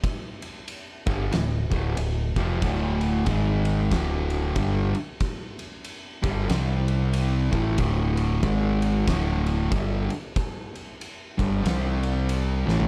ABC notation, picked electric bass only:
X:1
M:4/4
L:1/8
Q:"Swing" 1/4=93
K:C
V:1 name="Picked electric bass" clef=bass
z3 G,,, D,,, D,,, D,,, F,,, | D,,,2 ^G,,,2 D,,,2 =G,,, z | z3 G,,, C,,3 A,,, | D,,,2 ^G,,,2 D,,,2 =G,,, z |
z3 G,,, C,,3 A,,, |]